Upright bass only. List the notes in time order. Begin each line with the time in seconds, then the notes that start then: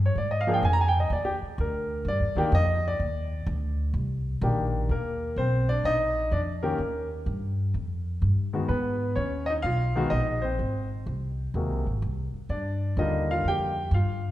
Already playing: G2
0.15 G#2
0.63 F2
1.10 D#2
1.42 muted upright bass stroke
1.58 D2
2.05 G2
2.20 D#2
2.35 D2
2.52 F2
3.00 D#2
3.46 D2
3.94 C2
4.41 A#1
4.89 D#2
5.36 B1
5.84 A#1
6.31 F2
6.78 D#2
7.26 G2
7.74 F2
8.22 G2
8.69 G#2
9.16 D#2
9.64 B1
10.11 A#1
10.59 G#1
11.06 C2
11.54 D#2
11.70 C2
11.87 G#1
12.02 C2
12.34 muted upright bass stroke
12.49 G2
12.97 D#2
13.44 F2
13.91 G2